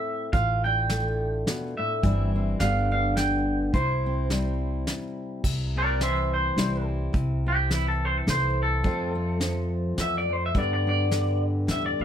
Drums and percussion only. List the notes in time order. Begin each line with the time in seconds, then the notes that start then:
0.33 kick, closed hi-hat
0.90 snare, closed hi-hat
1.47 snare, closed hi-hat
2.03 kick, closed hi-hat
2.60 snare, closed hi-hat
3.17 snare, closed hi-hat
3.74 kick, closed hi-hat
4.30 snare, closed hi-hat
4.87 snare, closed hi-hat
5.44 kick, crash
6.01 snare, closed hi-hat
6.58 snare, closed hi-hat
7.14 kick, closed hi-hat
7.71 snare, closed hi-hat
8.28 snare, closed hi-hat
8.84 kick, closed hi-hat
9.41 snare, closed hi-hat
9.98 snare, closed hi-hat
10.55 kick, closed hi-hat
11.11 snare, closed hi-hat
11.68 snare, closed hi-hat